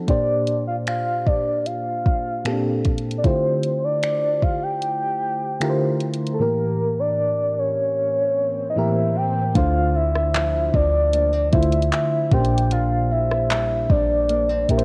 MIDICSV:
0, 0, Header, 1, 7, 480
1, 0, Start_track
1, 0, Key_signature, -1, "minor"
1, 0, Tempo, 789474
1, 50, Time_signature, 4, 2, 24, 8
1, 9026, End_track
2, 0, Start_track
2, 0, Title_t, "Soft synth lead"
2, 0, Program_c, 0, 80
2, 52, Note_on_c, 0, 74, 105
2, 387, Note_off_c, 0, 74, 0
2, 410, Note_on_c, 0, 77, 97
2, 464, Note_off_c, 0, 77, 0
2, 531, Note_on_c, 0, 77, 112
2, 769, Note_on_c, 0, 74, 92
2, 778, Note_off_c, 0, 77, 0
2, 1008, Note_on_c, 0, 77, 103
2, 1018, Note_off_c, 0, 74, 0
2, 1729, Note_off_c, 0, 77, 0
2, 1932, Note_on_c, 0, 74, 68
2, 1974, Note_on_c, 0, 72, 93
2, 1983, Note_off_c, 0, 74, 0
2, 2334, Note_on_c, 0, 74, 89
2, 2343, Note_off_c, 0, 72, 0
2, 2692, Note_on_c, 0, 77, 99
2, 2701, Note_off_c, 0, 74, 0
2, 2815, Note_on_c, 0, 79, 107
2, 2824, Note_off_c, 0, 77, 0
2, 3652, Note_off_c, 0, 79, 0
2, 3851, Note_on_c, 0, 69, 74
2, 3893, Note_on_c, 0, 70, 102
2, 3902, Note_off_c, 0, 69, 0
2, 4253, Note_on_c, 0, 74, 107
2, 4262, Note_off_c, 0, 70, 0
2, 4613, Note_on_c, 0, 73, 101
2, 4622, Note_off_c, 0, 74, 0
2, 5285, Note_off_c, 0, 73, 0
2, 5289, Note_on_c, 0, 75, 64
2, 5331, Note_on_c, 0, 76, 90
2, 5340, Note_off_c, 0, 75, 0
2, 5573, Note_on_c, 0, 79, 88
2, 5582, Note_off_c, 0, 76, 0
2, 5807, Note_off_c, 0, 79, 0
2, 5810, Note_on_c, 0, 77, 105
2, 6052, Note_on_c, 0, 76, 103
2, 6061, Note_off_c, 0, 77, 0
2, 6533, Note_on_c, 0, 74, 101
2, 6542, Note_off_c, 0, 76, 0
2, 7009, Note_off_c, 0, 74, 0
2, 7012, Note_on_c, 0, 76, 90
2, 7234, Note_off_c, 0, 76, 0
2, 7253, Note_on_c, 0, 76, 91
2, 7493, Note_on_c, 0, 79, 94
2, 7502, Note_off_c, 0, 76, 0
2, 7735, Note_on_c, 0, 77, 107
2, 7744, Note_off_c, 0, 79, 0
2, 7974, Note_on_c, 0, 76, 101
2, 7983, Note_off_c, 0, 77, 0
2, 8453, Note_on_c, 0, 74, 97
2, 8462, Note_off_c, 0, 76, 0
2, 8931, Note_on_c, 0, 76, 94
2, 8940, Note_off_c, 0, 74, 0
2, 9026, Note_off_c, 0, 76, 0
2, 9026, End_track
3, 0, Start_track
3, 0, Title_t, "FM electric piano"
3, 0, Program_c, 1, 5
3, 0, Control_c, 1, 64, 127
3, 0, Note_on_c, 1, 60, 77
3, 0, Note_on_c, 1, 63, 78
3, 0, Note_on_c, 1, 69, 92
3, 46, Note_on_c, 1, 46, 74
3, 50, Note_on_c, 1, 58, 65
3, 55, Note_on_c, 1, 62, 64
3, 58, Control_c, 1, 64, 0
3, 59, Note_on_c, 1, 67, 66
3, 62, Note_off_c, 1, 60, 0
3, 62, Note_off_c, 1, 69, 0
3, 63, Note_on_c, 1, 72, 74
3, 64, Note_off_c, 1, 63, 0
3, 156, Control_c, 1, 64, 127
3, 726, Note_off_c, 1, 46, 0
3, 728, Note_off_c, 1, 58, 0
3, 731, Note_off_c, 1, 62, 0
3, 733, Note_off_c, 1, 67, 0
3, 735, Note_off_c, 1, 72, 0
3, 1486, Note_on_c, 1, 46, 71
3, 1491, Note_on_c, 1, 58, 68
3, 1496, Note_on_c, 1, 60, 51
3, 1500, Note_on_c, 1, 67, 69
3, 1504, Note_on_c, 1, 69, 78
3, 1532, Note_off_c, 1, 60, 0
3, 1535, Note_on_c, 1, 62, 67
3, 1827, Note_off_c, 1, 46, 0
3, 1829, Note_off_c, 1, 58, 0
3, 1834, Note_off_c, 1, 67, 0
3, 1836, Note_off_c, 1, 69, 0
3, 1852, Note_off_c, 1, 62, 0
3, 1968, Note_on_c, 1, 50, 73
3, 1972, Note_on_c, 1, 57, 67
3, 1976, Note_on_c, 1, 64, 63
3, 1978, Control_c, 1, 64, 0
3, 1978, Note_on_c, 1, 65, 67
3, 1982, Note_on_c, 1, 67, 62
3, 1985, Note_on_c, 1, 72, 78
3, 2095, Control_c, 1, 64, 127
3, 2647, Note_off_c, 1, 50, 0
3, 2649, Note_off_c, 1, 57, 0
3, 2651, Note_off_c, 1, 64, 0
3, 2652, Note_off_c, 1, 65, 0
3, 2654, Note_off_c, 1, 67, 0
3, 2656, Note_off_c, 1, 72, 0
3, 3406, Note_on_c, 1, 50, 87
3, 3409, Note_on_c, 1, 57, 79
3, 3414, Note_on_c, 1, 64, 81
3, 3416, Note_on_c, 1, 65, 79
3, 3420, Note_on_c, 1, 67, 79
3, 3424, Note_on_c, 1, 70, 80
3, 3456, Note_off_c, 1, 70, 0
3, 3463, Note_on_c, 1, 72, 90
3, 3747, Note_off_c, 1, 50, 0
3, 3749, Note_off_c, 1, 57, 0
3, 3751, Note_off_c, 1, 64, 0
3, 3752, Note_off_c, 1, 65, 0
3, 3754, Note_off_c, 1, 67, 0
3, 3775, Note_off_c, 1, 72, 0
3, 3887, Note_on_c, 1, 45, 73
3, 3891, Note_on_c, 1, 52, 65
3, 3896, Note_on_c, 1, 58, 61
3, 3897, Control_c, 1, 64, 0
3, 3900, Note_on_c, 1, 67, 64
3, 3905, Note_on_c, 1, 70, 78
3, 4018, Control_c, 1, 64, 127
3, 4567, Note_off_c, 1, 45, 0
3, 4569, Note_off_c, 1, 52, 0
3, 4571, Note_off_c, 1, 58, 0
3, 4573, Note_off_c, 1, 67, 0
3, 4576, Note_off_c, 1, 70, 0
3, 5326, Note_on_c, 1, 45, 86
3, 5329, Note_on_c, 1, 52, 78
3, 5334, Note_on_c, 1, 58, 77
3, 5338, Note_on_c, 1, 67, 77
3, 5342, Note_on_c, 1, 70, 96
3, 5667, Note_off_c, 1, 45, 0
3, 5669, Note_off_c, 1, 52, 0
3, 5671, Note_off_c, 1, 58, 0
3, 5673, Note_off_c, 1, 67, 0
3, 5675, Note_off_c, 1, 70, 0
3, 5806, Note_on_c, 1, 50, 73
3, 5810, Note_on_c, 1, 57, 68
3, 5815, Note_on_c, 1, 62, 68
3, 5818, Control_c, 1, 64, 0
3, 5819, Note_on_c, 1, 65, 68
3, 5823, Note_on_c, 1, 72, 84
3, 5926, Control_c, 1, 64, 127
3, 6487, Note_off_c, 1, 50, 0
3, 6488, Note_off_c, 1, 57, 0
3, 6491, Note_off_c, 1, 62, 0
3, 6493, Note_off_c, 1, 65, 0
3, 6495, Note_off_c, 1, 72, 0
3, 7005, Note_on_c, 1, 50, 77
3, 7009, Note_on_c, 1, 57, 71
3, 7013, Note_on_c, 1, 64, 68
3, 7018, Note_on_c, 1, 65, 71
3, 7022, Note_on_c, 1, 72, 82
3, 7487, Note_off_c, 1, 50, 0
3, 7487, Note_on_c, 1, 46, 76
3, 7489, Note_off_c, 1, 57, 0
3, 7491, Note_off_c, 1, 64, 0
3, 7491, Note_on_c, 1, 58, 75
3, 7494, Note_off_c, 1, 65, 0
3, 7496, Note_off_c, 1, 72, 0
3, 7496, Note_on_c, 1, 61, 57
3, 7498, Control_c, 1, 64, 0
3, 7500, Note_on_c, 1, 67, 73
3, 7504, Note_on_c, 1, 72, 87
3, 7532, Note_off_c, 1, 61, 0
3, 7535, Note_on_c, 1, 62, 70
3, 7606, Control_c, 1, 64, 127
3, 8256, Note_off_c, 1, 46, 0
3, 8258, Note_off_c, 1, 58, 0
3, 8263, Note_off_c, 1, 67, 0
3, 8265, Note_off_c, 1, 72, 0
3, 8280, Note_off_c, 1, 62, 0
3, 8928, Note_on_c, 1, 46, 73
3, 8931, Note_on_c, 1, 58, 72
3, 8936, Note_on_c, 1, 62, 69
3, 8940, Note_on_c, 1, 67, 68
3, 8945, Note_on_c, 1, 70, 69
3, 8977, Note_off_c, 1, 70, 0
3, 8984, Note_on_c, 1, 72, 84
3, 9026, Note_off_c, 1, 46, 0
3, 9026, Note_off_c, 1, 58, 0
3, 9026, Note_off_c, 1, 62, 0
3, 9026, Note_off_c, 1, 67, 0
3, 9026, Note_off_c, 1, 72, 0
3, 9026, End_track
4, 0, Start_track
4, 0, Title_t, "Nylon-string guitar"
4, 0, Program_c, 2, 24
4, 5808, Note_on_c, 2, 50, 77
4, 5813, Note_on_c, 2, 64, 66
4, 6048, Note_on_c, 2, 60, 61
4, 6289, Note_on_c, 2, 53, 66
4, 6525, Note_off_c, 2, 53, 0
4, 6528, Note_off_c, 2, 64, 0
4, 6528, Note_on_c, 2, 53, 63
4, 6529, Note_off_c, 2, 60, 0
4, 6531, Note_on_c, 2, 60, 61
4, 6535, Note_on_c, 2, 64, 66
4, 6766, Note_off_c, 2, 60, 0
4, 6768, Note_on_c, 2, 58, 68
4, 6888, Note_off_c, 2, 58, 0
4, 6888, Note_on_c, 2, 60, 55
4, 7000, Note_off_c, 2, 64, 0
4, 7007, Note_on_c, 2, 64, 64
4, 7487, Note_on_c, 2, 46, 80
4, 7536, Note_off_c, 2, 64, 0
4, 7537, Note_off_c, 2, 60, 0
4, 7722, Note_off_c, 2, 46, 0
4, 7729, Note_on_c, 2, 46, 86
4, 7733, Note_on_c, 2, 62, 67
4, 7936, Note_off_c, 2, 50, 0
4, 7968, Note_on_c, 2, 60, 61
4, 8207, Note_off_c, 2, 53, 0
4, 8209, Note_on_c, 2, 55, 67
4, 8447, Note_off_c, 2, 55, 0
4, 8449, Note_on_c, 2, 55, 63
4, 8451, Note_off_c, 2, 60, 0
4, 8453, Note_on_c, 2, 60, 61
4, 8454, Note_off_c, 2, 62, 0
4, 8457, Note_on_c, 2, 62, 69
4, 8687, Note_off_c, 2, 60, 0
4, 8690, Note_on_c, 2, 58, 67
4, 8810, Note_off_c, 2, 58, 0
4, 8810, Note_on_c, 2, 60, 54
4, 8928, Note_off_c, 2, 62, 0
4, 8931, Note_on_c, 2, 62, 64
4, 9026, Note_off_c, 2, 46, 0
4, 9026, Note_off_c, 2, 55, 0
4, 9026, Note_off_c, 2, 60, 0
4, 9026, Note_off_c, 2, 62, 0
4, 9026, End_track
5, 0, Start_track
5, 0, Title_t, "808-style bass"
5, 0, Program_c, 3, 38
5, 5809, Note_on_c, 3, 38, 106
5, 6505, Note_off_c, 3, 38, 0
5, 6529, Note_on_c, 3, 38, 100
5, 6990, Note_off_c, 3, 38, 0
5, 7012, Note_on_c, 3, 38, 102
5, 7241, Note_off_c, 3, 38, 0
5, 7489, Note_on_c, 3, 34, 100
5, 8425, Note_off_c, 3, 34, 0
5, 8450, Note_on_c, 3, 34, 102
5, 8911, Note_off_c, 3, 34, 0
5, 8929, Note_on_c, 3, 34, 111
5, 9026, Note_off_c, 3, 34, 0
5, 9026, End_track
6, 0, Start_track
6, 0, Title_t, "Swell"
6, 0, Program_c, 4, 103
6, 3889, Note_on_c, 4, 60, 79
6, 5809, Note_off_c, 4, 60, 0
6, 9026, End_track
7, 0, Start_track
7, 0, Title_t, "Drums"
7, 50, Note_on_c, 9, 36, 99
7, 50, Note_on_c, 9, 42, 67
7, 111, Note_off_c, 9, 36, 0
7, 111, Note_off_c, 9, 42, 0
7, 288, Note_on_c, 9, 42, 61
7, 348, Note_off_c, 9, 42, 0
7, 530, Note_on_c, 9, 42, 81
7, 534, Note_on_c, 9, 26, 116
7, 590, Note_off_c, 9, 42, 0
7, 595, Note_off_c, 9, 26, 0
7, 770, Note_on_c, 9, 36, 81
7, 831, Note_off_c, 9, 36, 0
7, 1011, Note_on_c, 9, 42, 61
7, 1072, Note_off_c, 9, 42, 0
7, 1252, Note_on_c, 9, 36, 90
7, 1313, Note_off_c, 9, 36, 0
7, 1492, Note_on_c, 9, 42, 62
7, 1495, Note_on_c, 9, 26, 103
7, 1552, Note_off_c, 9, 42, 0
7, 1555, Note_off_c, 9, 26, 0
7, 1731, Note_on_c, 9, 42, 55
7, 1735, Note_on_c, 9, 36, 90
7, 1791, Note_off_c, 9, 42, 0
7, 1796, Note_off_c, 9, 36, 0
7, 1811, Note_on_c, 9, 42, 56
7, 1872, Note_off_c, 9, 42, 0
7, 1891, Note_on_c, 9, 42, 54
7, 1951, Note_off_c, 9, 42, 0
7, 1970, Note_on_c, 9, 36, 98
7, 1970, Note_on_c, 9, 42, 67
7, 2031, Note_off_c, 9, 36, 0
7, 2031, Note_off_c, 9, 42, 0
7, 2208, Note_on_c, 9, 42, 59
7, 2269, Note_off_c, 9, 42, 0
7, 2449, Note_on_c, 9, 42, 80
7, 2454, Note_on_c, 9, 26, 110
7, 2510, Note_off_c, 9, 42, 0
7, 2515, Note_off_c, 9, 26, 0
7, 2690, Note_on_c, 9, 36, 82
7, 2751, Note_off_c, 9, 36, 0
7, 2930, Note_on_c, 9, 42, 59
7, 2991, Note_off_c, 9, 42, 0
7, 3411, Note_on_c, 9, 42, 62
7, 3413, Note_on_c, 9, 26, 113
7, 3471, Note_off_c, 9, 42, 0
7, 3474, Note_off_c, 9, 26, 0
7, 3650, Note_on_c, 9, 42, 53
7, 3711, Note_off_c, 9, 42, 0
7, 3730, Note_on_c, 9, 42, 57
7, 3791, Note_off_c, 9, 42, 0
7, 3810, Note_on_c, 9, 42, 53
7, 3871, Note_off_c, 9, 42, 0
7, 5809, Note_on_c, 9, 36, 105
7, 5809, Note_on_c, 9, 42, 71
7, 5870, Note_off_c, 9, 36, 0
7, 5870, Note_off_c, 9, 42, 0
7, 6174, Note_on_c, 9, 37, 65
7, 6235, Note_off_c, 9, 37, 0
7, 6290, Note_on_c, 9, 42, 85
7, 6294, Note_on_c, 9, 39, 119
7, 6350, Note_off_c, 9, 42, 0
7, 6355, Note_off_c, 9, 39, 0
7, 6530, Note_on_c, 9, 36, 84
7, 6590, Note_off_c, 9, 36, 0
7, 6770, Note_on_c, 9, 42, 66
7, 6831, Note_off_c, 9, 42, 0
7, 7009, Note_on_c, 9, 42, 53
7, 7011, Note_on_c, 9, 36, 98
7, 7070, Note_off_c, 9, 42, 0
7, 7070, Note_on_c, 9, 42, 53
7, 7072, Note_off_c, 9, 36, 0
7, 7129, Note_off_c, 9, 42, 0
7, 7129, Note_on_c, 9, 42, 50
7, 7189, Note_off_c, 9, 42, 0
7, 7189, Note_on_c, 9, 42, 52
7, 7250, Note_off_c, 9, 42, 0
7, 7251, Note_on_c, 9, 42, 65
7, 7253, Note_on_c, 9, 39, 115
7, 7311, Note_off_c, 9, 42, 0
7, 7314, Note_off_c, 9, 39, 0
7, 7488, Note_on_c, 9, 42, 42
7, 7489, Note_on_c, 9, 36, 111
7, 7549, Note_off_c, 9, 36, 0
7, 7549, Note_off_c, 9, 42, 0
7, 7568, Note_on_c, 9, 42, 57
7, 7629, Note_off_c, 9, 42, 0
7, 7648, Note_on_c, 9, 42, 65
7, 7709, Note_off_c, 9, 42, 0
7, 7728, Note_on_c, 9, 42, 71
7, 7789, Note_off_c, 9, 42, 0
7, 8095, Note_on_c, 9, 37, 64
7, 8156, Note_off_c, 9, 37, 0
7, 8209, Note_on_c, 9, 42, 87
7, 8214, Note_on_c, 9, 39, 125
7, 8270, Note_off_c, 9, 42, 0
7, 8274, Note_off_c, 9, 39, 0
7, 8450, Note_on_c, 9, 36, 86
7, 8511, Note_off_c, 9, 36, 0
7, 8690, Note_on_c, 9, 42, 64
7, 8751, Note_off_c, 9, 42, 0
7, 8930, Note_on_c, 9, 42, 57
7, 8990, Note_off_c, 9, 42, 0
7, 8990, Note_on_c, 9, 42, 58
7, 9026, Note_off_c, 9, 42, 0
7, 9026, End_track
0, 0, End_of_file